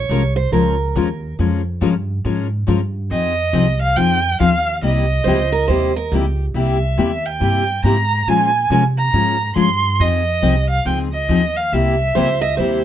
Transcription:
Already playing: steel-string acoustic guitar C#5
0.09 upright bass C2, steel-string acoustic guitar F3 G#3 C#4 F4 A#4
0.36 steel-string acoustic guitar C5
0.52 upright bass C#2, steel-string acoustic guitar F3 G#3 C#4 F4 A#4
0.96 upright bass D#2, steel-string acoustic guitar F3 G#3 C#4 F4 A#4
1.39 upright bass F2, steel-string acoustic guitar F3 G#3 C#4 F4 A#4
1.81 upright bass G2, steel-string acoustic guitar F3 G#3 C#4 F4 A#4
2.25 upright bass G#2, steel-string acoustic guitar F3 G#3 C#4 F4 A#4
2.67 upright bass G2, steel-string acoustic guitar F3 G#3 C#4 F4 A#4
3.11 upright bass F2, steel-string acoustic guitar F3 C4 D#4 G#4, violin D#5
3.53 upright bass C2, steel-string acoustic guitar F3 C4 D#4 G#4
3.82 violin F5
3.96 upright bass F2, steel-string acoustic guitar F3 C4 D#4 G#4, violin G5
4.40 upright bass D#2, steel-string acoustic guitar F3 C4 D#4 G#4, violin F5
4.82 upright bass C2, steel-string acoustic guitar C3 G3 A#3 E4 G4, violin D#5
5.24 upright bass C#2, steel-string acoustic guitar C3 G3 A#3 E4 G4 C5
5.52 steel-string acoustic guitar A#4
5.68 upright bass D#2, steel-string acoustic guitar C3 G3 A#3 E4 G4 C5
5.96 steel-string acoustic guitar A#4
6.12 upright bass C#2, steel-string acoustic guitar C3 G3 A#3 E4 G4
6.54 upright bass C2, steel-string acoustic guitar C3 G3 A#3 E4 G4, violin E5
6.98 upright bass D#2, steel-string acoustic guitar C3 G3 A#3 E4 G4
7.26 violin G5
7.40 upright bass G2, steel-string acoustic guitar C3 G3 A#3 E4 G4
7.84 upright bass G#2, steel-string acoustic guitar C3 G3 A#3 E4 G4, violin A#5
8.27 upright bass A#2, steel-string acoustic guitar F3 G#3 C#4 F4 A#4, violin G#5
8.70 upright bass C3, steel-string acoustic guitar F3 G#3 C#4 F4 A#4, violin G#5
8.98 violin A#5
9.13 upright bass G#2, steel-string acoustic guitar F3 G#3 C#4 F4 A#4
9.56 upright bass G2, steel-string acoustic guitar F3 G#3 C#4 F4 A#4, violin C6
9.99 upright bass F2, steel-string acoustic guitar F3 C4 D#4 G#4, violin D#5
10.42 upright bass C2, steel-string acoustic guitar F3 C4 D#4 G#4
10.70 violin F5
10.85 upright bass C#2, steel-string acoustic guitar F3 C4 D#4 G#4, violin G5
11.12 violin D#5
11.29 upright bass D#2, steel-string acoustic guitar F3 C4 D#4 G#4
11.56 violin F5
11.72 upright bass C2, steel-string acoustic guitar C3 G3 A#3 E4 G4, violin E5
12.15 upright bass C#2, steel-string acoustic guitar C3 G3 A#3 E4 G4 C5
12.41 steel-string acoustic guitar D#5
12.57 upright bass D#2, steel-string acoustic guitar C3 G3 A#3 E4 G4 C5

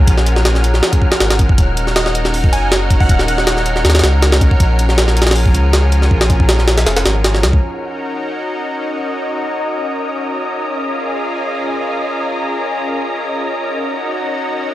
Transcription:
Already playing: analog synth pad F3 C#4 G#4 A#4, synth texture F#5 F6
0.07 sub bass A#1, kick, closed hi-hat
0.18 snare
0.26 closed hi-hat
0.36 snare
0.45 snare, closed hi-hat
0.55 snare
0.64 closed hi-hat
0.74 snare
0.83 snare
0.93 kick, closed hi-hat
1.02 kick
1.12 snare
1.20 sub bass G#1, snare, closed hi-hat
1.30 snare, closed hi-hat
1.39 kick, closed hi-hat
1.49 kick
1.58 sub bass D#1, analog synth pad C#4 D#4 F#4 A#4, kick, closed hi-hat
1.77 closed hi-hat
1.87 snare
1.96 digital synth lead D#5, snare, closed hi-hat
2.06 snare
2.15 closed hi-hat
2.25 snare
2.34 open hi-hat
2.44 kick
2.52 sub bass F#1, digital synth lead G#5, closed hi-hat
2.72 snare, closed hi-hat
2.90 kick, closed hi-hat
3.00 digital synth lead F#5, kick
3.09 sub bass D#1, kick, closed hi-hat
3.19 snare
3.28 digital synth lead F#5, closed hi-hat
3.38 snare
3.47 snare, closed hi-hat
3.57 snare
3.66 closed hi-hat
3.76 snare
3.84 sub bass D#2, snare, closed hi-hat
3.90 snare, closed hi-hat
3.95 snare, closed hi-hat
3.99 sub bass C#2, snare, closed hi-hat
4.04 snare, closed hi-hat
4.22 snare, closed hi-hat
4.32 snare
4.41 kick, closed hi-hat
4.51 kick
4.60 sub bass A#1, analog synth pad F3 G#4, kick, closed hi-hat
4.79 closed hi-hat
4.89 snare
4.98 snare, closed hi-hat
5.08 snare
5.17 closed hi-hat
5.22 snare, closed hi-hat
5.27 snare, closed hi-hat
5.31 snare, closed hi-hat
5.36 open hi-hat
5.46 kick
5.54 sub bass C#2, closed hi-hat
5.73 snare, closed hi-hat
5.92 closed hi-hat
6.02 snare
6.11 sub bass A#1, kick
6.21 snare
6.30 kick, closed hi-hat
6.40 kick
6.49 snare, closed hi-hat
6.59 snare
6.68 snare, closed hi-hat
6.78 snare, closed hi-hat
6.86 sub bass F1, snare, closed hi-hat
6.97 snare, closed hi-hat
7.05 sub bass G#1, snare, closed hi-hat
7.24 snare, closed hi-hat
7.34 snare
7.43 sub bass C#2, snare, closed hi-hat
7.53 kick
7.62 analog synth pad C#4 D#4 F#4 A#4, synth texture D#5 D#6
10.64 analog synth pad F4 G#4
13.66 analog synth pad D#4 F#4

